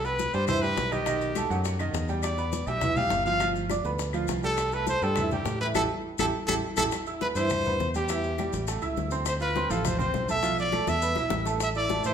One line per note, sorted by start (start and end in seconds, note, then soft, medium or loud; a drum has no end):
0.00 0.27 C2 medium
0.05 0.28 B3 medium
0.05 0.28 B4 medium
0.05 0.36 B4 loud
0.05 0.28 B5 medium
0.05 high bongo soft
0.05 high conga soft
0.05 maracas soft
0.19 high bongo medium
0.19 high conga medium
0.19 maracas medium
0.33 0.74 G2 medium
0.33 0.45 G3 medium
0.33 0.46 G4 medium
0.33 0.47 C5 loud
0.33 0.46 G5 medium
0.33 high conga soft
0.33 maracas soft
0.48 0.60 E3 medium
0.48 0.60 E4 medium
0.48 0.63 C5 loud
0.48 0.60 E5 medium
0.48 high bongo medium
0.48 high conga soft
0.48 low conga medium
0.48 claves medium
0.48 maracas medium
0.62 0.87 G3 medium
0.62 0.87 G4 medium
0.62 0.94 B4 loud
0.62 0.87 G5 medium
0.62 high bongo soft
0.62 high conga soft
0.62 maracas soft
0.77 1.45 B1 medium
0.77 high bongo medium
0.77 low bongo medium
0.77 high conga medium
0.77 maracas medium
0.91 1.03 D#3 medium
0.91 1.04 D#4 medium
0.91 1.80 G4 medium
0.91 1.04 D#5 medium
0.91 high bongo soft
0.91 high conga soft
0.91 maracas soft
1.06 1.30 D#3 medium
1.06 1.31 D#4 medium
1.06 1.31 D#5 medium
1.06 high bongo medium
1.06 high conga soft
1.06 claves medium
1.06 maracas medium
1.21 high bongo soft
1.21 high conga soft
1.21 maracas soft
1.35 1.48 A3 medium
1.35 1.48 A4 medium
1.35 1.48 A5 medium
1.35 high bongo medium
1.35 high conga medium
1.35 claves medium
1.35 maracas medium
1.50 1.91 F#2 medium
1.50 1.74 F#3 medium
1.50 1.74 F#4 medium
1.50 1.75 F#5 medium
1.50 high bongo soft
1.50 high conga soft
1.50 maracas soft
1.65 high bongo medium
1.65 high conga soft
1.65 maracas medium
1.79 2.04 D#3 medium
1.79 2.04 D#4 medium
1.79 2.04 D#5 medium
1.79 high bongo soft
1.79 high conga soft
1.79 claves medium
1.79 maracas soft
1.93 2.61 E2 medium
1.93 high bongo medium
1.93 low bongo medium
1.93 high conga soft
1.93 maracas medium
2.08 2.33 G3 medium
2.08 2.33 G4 medium
2.08 2.33 G5 medium
2.08 high conga soft
2.08 maracas soft
2.23 2.68 D5 medium
2.23 high bongo medium
2.23 high conga soft
2.23 claves medium
2.23 maracas medium
2.38 2.62 B3 medium
2.38 2.62 B4 medium
2.38 2.62 B5 medium
2.38 high bongo soft
2.38 maracas soft
2.53 high bongo medium
2.53 high conga medium
2.53 maracas medium
2.67 3.08 B1 medium
2.67 2.79 G3 medium
2.67 2.80 G4 medium
2.67 2.98 E5 loud
2.67 2.80 G5 medium
2.67 high conga soft
2.67 maracas soft
2.81 2.94 E3 medium
2.81 2.95 E4 medium
2.81 2.95 E5 medium
2.81 high bongo medium
2.81 high conga soft
2.81 low conga medium
2.81 claves medium
2.81 maracas medium
2.96 3.21 G3 medium
2.96 3.21 G4 medium
2.96 3.25 F5 loud
2.96 3.21 G5 medium
2.96 high bongo soft
2.96 high conga soft
2.96 low conga medium
2.96 maracas soft
3.10 3.79 G1 medium
3.10 high bongo medium
3.10 low bongo medium
3.10 high conga medium
3.10 maracas medium
3.25 3.39 F3 medium
3.25 3.39 F4 medium
3.25 3.53 F5 loud
3.25 3.39 F5 medium
3.25 high bongo soft
3.25 high conga soft
3.25 maracas soft
3.40 3.65 F3 medium
3.40 3.65 F4 medium
3.40 3.65 F5 medium
3.40 high bongo medium
3.40 high conga soft
3.40 claves medium
3.40 maracas medium
3.56 high bongo soft
3.56 high conga soft
3.56 maracas soft
3.70 3.82 D4 medium
3.70 3.82 D5 medium
3.70 3.82 D6 medium
3.70 high bongo medium
3.70 high conga medium
3.70 claves medium
3.70 maracas medium
3.85 4.25 D2 medium
3.85 4.09 B3 medium
3.85 4.09 B4 medium
3.85 4.09 B5 medium
3.85 high bongo soft
3.85 high conga soft
3.85 maracas soft
3.99 high bongo medium
3.99 high conga soft
3.99 maracas medium
4.13 4.38 F3 medium
4.13 4.38 F4 medium
4.13 4.38 F5 medium
4.13 high bongo soft
4.13 high conga soft
4.13 claves medium
4.13 maracas soft
4.28 4.96 C2 medium
4.28 high bongo medium
4.28 low bongo medium
4.28 high conga soft
4.28 maracas medium
4.43 4.67 G3 medium
4.43 4.67 G4 medium
4.43 4.75 A4 loud
4.43 4.68 G5 medium
4.43 high conga soft
4.43 maracas soft
4.57 high bongo medium
4.57 high conga soft
4.57 claves medium
4.57 maracas medium
4.72 4.97 A3 medium
4.72 4.97 A4 medium
4.72 4.88 B4 medium
4.72 4.97 A5 medium
4.72 high bongo soft
4.72 high conga soft
4.72 maracas soft
4.87 5.04 C5 loud
4.87 high bongo medium
4.87 high conga medium
4.87 maracas medium
5.02 5.43 G2 medium
5.02 5.15 G3 medium
5.02 5.15 G4 medium
5.02 5.32 A4 loud
5.02 5.15 G5 medium
5.02 high conga soft
5.02 maracas soft
5.16 5.29 E3 medium
5.16 5.29 E4 medium
5.16 5.29 E5 medium
5.16 high bongo medium
5.16 high conga soft
5.16 low conga medium
5.16 claves medium
5.16 maracas medium
5.31 5.55 G3 medium
5.31 5.56 G4 medium
5.31 5.59 G4 medium
5.31 5.56 G5 medium
5.31 high bongo soft
5.31 high conga soft
5.31 low conga medium
5.31 maracas soft
5.46 5.73 A2 medium
5.46 high bongo medium
5.46 low bongo medium
5.46 high conga medium
5.46 maracas medium
5.61 5.73 E3 medium
5.61 5.73 E4 medium
5.61 5.67 B4 loud
5.61 5.73 E5 medium
5.61 high bongo soft
5.61 high conga soft
5.61 maracas soft
5.74 5.86 A1 loud
5.74 5.84 E4 medium
5.74 5.85 G4 loud
5.74 5.82 A4 medium
5.74 5.85 A4 loud
5.74 high bongo medium
5.74 high conga medium
5.74 claves loud
5.74 maracas loud
6.18 6.30 A1 medium
6.18 6.29 E4 medium
6.18 6.29 G4 loud
6.18 6.26 A4 medium
6.18 6.29 A4 loud
6.18 high bongo medium
6.18 high conga medium
6.18 claves loud
6.18 maracas loud
6.47 6.59 A1 medium
6.47 6.58 E4 medium
6.47 6.58 G4 medium
6.47 6.54 A4 medium
6.47 6.58 A4 medium
6.47 high bongo medium
6.47 high conga loud
6.47 claves loud
6.47 maracas medium
6.77 6.88 A1 medium
6.77 6.87 E4 medium
6.77 6.87 G4 medium
6.77 6.84 A4 medium
6.77 6.87 A4 medium
6.77 high bongo loud
6.77 high conga medium
6.77 claves loud
6.77 maracas loud
6.92 high bongo medium
6.92 high conga soft
6.92 claves medium
6.92 maracas medium
7.06 7.19 E4 medium
7.06 7.19 E5 medium
7.06 7.19 E6 medium
7.06 high conga soft
7.06 maracas soft
7.21 7.34 B3 medium
7.21 7.28 B4 medium
7.21 7.34 B4 medium
7.21 7.34 B5 medium
7.21 high bongo medium
7.21 high conga medium
7.21 maracas soft
7.35 7.76 G2 medium
7.35 7.61 E3 medium
7.35 7.61 E4 medium
7.35 7.91 C5 loud
7.35 7.61 E5 medium
7.35 high bongo soft
7.35 high conga soft
7.35 maracas medium
7.50 high bongo medium
7.50 high conga soft
7.50 low conga medium
7.50 claves medium
7.50 maracas medium
7.65 7.90 B3 medium
7.65 7.90 B4 medium
7.65 7.90 B5 medium
7.65 high bongo soft
7.65 high conga soft
7.65 low conga medium
7.65 maracas soft
7.80 8.48 E2 medium
7.80 high bongo soft
7.80 low bongo medium
7.80 high conga medium
7.80 maracas soft
7.94 8.07 G3 medium
7.94 8.07 G4 medium
7.94 8.79 G4 medium
7.94 8.07 G5 medium
7.94 high bongo soft
7.94 high conga medium
7.94 maracas medium
8.08 8.33 E3 medium
8.08 8.34 E4 medium
8.08 8.34 E5 medium
8.08 high bongo medium
8.08 high conga soft
8.08 claves medium
8.08 maracas medium
8.23 high conga soft
8.23 maracas soft
8.38 8.63 G3 medium
8.38 8.63 G4 medium
8.38 8.63 G5 medium
8.38 high bongo medium
8.38 high conga medium
8.38 claves medium
8.38 maracas soft
8.53 8.81 A1 medium
8.53 high bongo soft
8.53 high conga medium
8.53 maracas medium
8.67 8.80 A3 medium
8.67 8.80 A4 medium
8.67 8.80 A5 medium
8.67 high bongo medium
8.67 high conga soft
8.67 maracas medium
8.82 8.96 C#2 medium
8.82 9.06 E4 medium
8.82 9.06 E5 medium
8.82 9.07 E6 medium
8.82 high bongo soft
8.82 high conga soft
8.82 claves medium
8.82 maracas soft
8.96 9.65 D2 medium
8.96 high bongo soft
8.96 low bongo medium
8.96 high conga medium
8.96 maracas soft
9.11 9.36 C4 medium
9.11 9.36 C5 medium
9.11 9.36 C6 medium
9.11 high bongo soft
9.11 maracas medium
9.26 9.34 C5 medium
9.26 high bongo medium
9.26 high conga soft
9.26 claves medium
9.26 maracas medium
9.40 9.53 F4 medium
9.40 9.72 B4 medium
9.40 9.53 F5 medium
9.40 9.53 F6 medium
9.40 high conga soft
9.40 maracas soft
9.55 9.68 C4 medium
9.55 9.68 C5 medium
9.55 9.68 C6 medium
9.55 high bongo medium
9.55 high conga medium
9.55 maracas soft
9.70 10.11 A1 loud
9.70 9.94 F3 medium
9.70 9.95 F4 medium
9.70 9.87 A4 medium
9.70 9.95 F5 medium
9.70 high bongo soft
9.70 high conga soft
9.70 maracas medium
9.85 10.00 C5 medium
9.85 high bongo medium
9.85 high conga soft
9.85 low conga medium
9.85 claves medium
9.85 maracas medium
9.98 10.23 C4 medium
9.98 10.23 C5 medium
9.98 10.27 C5 medium
9.98 10.23 C6 medium
9.98 high bongo soft
9.98 high conga soft
9.98 low conga medium
9.98 maracas soft
10.14 10.82 B1 medium
10.14 high bongo soft
10.14 low bongo medium
10.14 high conga medium
10.14 maracas soft
10.29 10.41 A3 medium
10.29 10.41 A4 medium
10.29 10.57 E5 loud
10.29 10.41 A5 medium
10.29 high bongo soft
10.29 high conga medium
10.29 maracas medium
10.43 10.67 F3 medium
10.43 10.67 F4 medium
10.43 10.68 F5 medium
10.43 high bongo medium
10.43 high conga soft
10.43 claves medium
10.43 maracas medium
10.58 10.90 D5 loud
10.58 high conga soft
10.58 maracas soft
10.72 10.97 A3 medium
10.72 10.97 A4 medium
10.72 10.97 A5 medium
10.72 high bongo medium
10.72 high conga medium
10.72 claves medium
10.72 maracas soft
10.87 11.15 E2 medium
10.87 11.47 E5 loud
10.87 high bongo medium
10.87 high conga loud
10.87 maracas medium
11.02 11.14 B3 medium
11.02 11.14 B4 medium
11.02 11.14 B5 medium
11.02 high conga soft
11.02 maracas medium
11.16 11.30 B1 medium
11.16 11.41 E4 medium
11.16 11.41 E5 medium
11.16 11.41 E6 medium
11.16 high bongo medium
11.16 high conga soft
11.16 claves medium
11.16 maracas soft
11.30 11.99 A1 medium
11.30 low bongo loud
11.30 high conga medium
11.30 maracas soft
11.45 11.70 A3 medium
11.45 11.70 A4 medium
11.45 11.71 A5 medium
11.45 low bongo medium
11.45 high conga soft
11.45 maracas medium
11.60 11.68 E5 loud
11.60 high bongo medium
11.60 high conga soft
11.60 claves medium
11.60 maracas medium
11.75 11.88 E4 medium
11.75 12.03 D5 loud
11.75 11.88 E5 medium
11.75 11.88 E6 medium
11.75 high conga soft
11.75 maracas soft
11.89 12.02 A3 medium
11.89 12.02 A4 medium
11.89 12.03 A5 medium
11.89 high bongo medium
11.89 high conga medium
11.89 maracas soft
12.04 12.14 A2 medium
12.04 12.14 E3 medium
12.04 12.14 E4 medium
12.04 12.14 C5 loud
12.04 12.14 E5 medium
12.04 high bongo soft
12.04 high conga soft
12.04 maracas medium